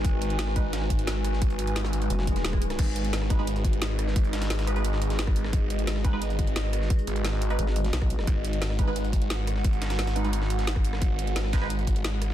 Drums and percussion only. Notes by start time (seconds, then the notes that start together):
0.05 kick, closed hi-hat
0.22 closed hi-hat
0.30 closed hi-hat
0.39 snare, closed hi-hat
0.47 cross-stick, snare
0.56 kick, closed hi-hat
0.73 snare, closed hi-hat
0.82 snare
0.90 kick, closed hi-hat
0.99 closed hi-hat
1.07 snare, closed hi-hat
1.25 cross-stick, closed hi-hat
1.33 snare
1.42 kick, closed hi-hat
1.50 closed hi-hat
1.59 closed hi-hat
1.67 closed hi-hat
1.76 snare, closed hi-hat
1.85 cross-stick, snare
1.93 closed hi-hat
2.02 closed hi-hat
2.10 closed hi-hat
2.19 snare
2.27 kick, closed hi-hat
2.36 snare, closed hi-hat
2.45 snare, closed hi-hat
2.53 kick, cross-stick
2.62 closed hi-hat
2.70 cross-stick, snare, closed hi-hat
2.79 kick, closed hi-hat, crash
2.96 closed hi-hat
3.05 closed hi-hat
3.13 snare, closed hi-hat
3.22 cross-stick, snare
3.30 kick, closed hi-hat
3.47 closed hi-hat
3.56 closed hi-hat
3.65 kick, closed hi-hat
3.73 closed hi-hat
3.82 snare, closed hi-hat
3.99 cross-stick, closed hi-hat
4.07 snare
4.16 kick, closed hi-hat
4.25 closed hi-hat
4.33 snare, closed hi-hat
4.42 snare, closed hi-hat
4.50 snare, closed hi-hat
4.59 snare, closed hi-hat
4.67 closed hi-hat
4.76 closed hi-hat
4.84 closed hi-hat
4.93 snare
5.02 closed hi-hat
5.10 snare, closed hi-hat
5.19 snare, closed hi-hat
5.27 kick, cross-stick
5.36 closed hi-hat
5.44 cross-stick, snare
5.53 kick, closed hi-hat
5.70 closed hi-hat
5.79 closed hi-hat
5.87 snare, closed hi-hat
5.96 cross-stick, snare
6.05 kick, closed hi-hat
6.22 closed hi-hat
6.30 closed hi-hat
6.39 kick, closed hi-hat
6.47 closed hi-hat
6.56 snare, closed hi-hat
6.73 cross-stick, closed hi-hat
6.82 snare
6.90 kick, closed hi-hat
6.99 closed hi-hat
7.07 closed hi-hat
7.16 closed hi-hat
7.25 snare, closed hi-hat
7.33 snare
7.42 closed hi-hat
7.50 closed hi-hat
7.59 closed hi-hat
7.67 snare
7.76 closed hi-hat
7.85 snare, closed hi-hat
7.93 snare, closed hi-hat
8.02 kick, cross-stick
8.10 closed hi-hat
8.19 cross-stick, snare
8.27 kick, closed hi-hat
8.45 closed hi-hat
8.53 closed hi-hat
8.62 snare, closed hi-hat
8.70 cross-stick, snare
8.79 kick, closed hi-hat
8.96 closed hi-hat
9.04 closed hi-hat
9.13 kick, closed hi-hat
9.22 closed hi-hat
9.30 snare, closed hi-hat
9.47 cross-stick, closed hi-hat
9.56 snare
9.64 kick, closed hi-hat
9.73 closed hi-hat
9.82 snare, closed hi-hat
9.90 snare, closed hi-hat
9.99 snare, closed hi-hat
10.07 snare, closed hi-hat
10.16 closed hi-hat
10.24 closed hi-hat
10.33 closed hi-hat
10.42 snare
10.50 closed hi-hat
10.59 snare, closed hi-hat
10.67 snare, closed hi-hat
10.76 kick, cross-stick
10.85 closed hi-hat
10.93 cross-stick, snare
11.02 kick, closed hi-hat
11.19 closed hi-hat
11.27 closed hi-hat
11.36 snare, closed hi-hat
11.45 cross-stick, snare
11.53 kick, snare, closed hi-hat
11.62 snare
11.70 closed hi-hat
11.79 closed hi-hat
11.87 kick, closed hi-hat
11.96 closed hi-hat
12.05 snare, closed hi-hat
12.22 cross-stick, closed hi-hat
12.30 snare